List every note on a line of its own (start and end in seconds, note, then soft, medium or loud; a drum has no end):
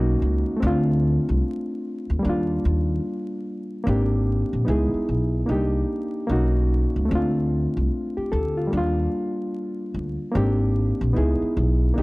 0.00 0.14 B1 medium
0.00 0.60 A#3 medium
0.00 0.61 C#4 medium
0.00 0.62 D#4 medium
0.00 0.63 F#4 medium
0.22 0.43 C#2 medium
0.57 2.18 A3 medium
0.57 2.20 C4 medium
0.62 1.17 D2 loud
0.62 2.21 D4 medium
0.67 2.23 F4 medium
1.29 1.40 C2 medium
2.10 2.21 D2 medium
2.19 3.80 G3 medium
2.19 3.82 A#3 medium
2.25 2.57 D#2 medium
2.25 3.84 D4 medium
2.29 3.85 F4 medium
2.65 2.98 D#2 medium
3.84 4.41 G#1 loud
3.84 4.66 A#3 medium
3.84 4.67 C4 medium
3.84 4.68 D4 medium
3.89 4.69 G4 medium
4.53 4.65 A#1 medium
4.65 4.89 C#2 loud
4.65 5.47 B3 medium
4.65 5.48 D#4 medium
4.65 5.49 E4 medium
4.70 5.49 G#4 medium
4.94 muted upright bass stroke soft
5.09 5.41 B1 medium
5.46 5.82 C2 medium
5.46 6.26 A#3 medium
5.46 6.29 D4 medium
5.46 6.29 D#4 medium
5.51 6.31 G4 medium
6.27 6.84 B1 medium
6.27 7.09 A#3 medium
6.27 7.10 C#4 medium
6.27 7.11 D#4 medium
6.32 7.12 F#4 medium
6.96 7.08 C#2 medium
7.05 8.66 A3 medium
7.05 8.68 C4 medium
7.11 7.65 D2 loud
7.11 8.70 D4 medium
7.15 7.92 F4 medium
7.77 7.89 C2 medium
8.17 8.31 G4 medium
8.17 muted upright bass stroke soft
8.32 8.65 D2 medium
8.32 8.56 A4 medium
8.57 8.76 F4 medium
8.67 10.28 G3 medium
8.67 10.30 A#3 medium
8.73 9.06 D#2 medium
8.73 10.32 D4 medium
8.77 10.34 F4 medium
9.94 10.15 D2 medium
10.32 10.89 G#1 loud
10.32 11.14 A#3 medium
10.32 11.15 C4 medium
10.32 11.16 D4 medium
10.37 11.17 G4 medium
11.01 11.13 A#1 medium
11.13 11.37 C#2 medium
11.13 11.95 B3 medium
11.13 11.96 D#4 medium
11.13 11.97 E4 medium
11.18 11.98 G#4 medium
11.42 muted upright bass stroke soft
11.57 11.90 B1 medium
11.94 12.03 C2 medium
11.94 12.03 A#3 medium
11.94 12.03 D4 medium
11.94 12.03 D#4 medium
11.99 12.03 G4 medium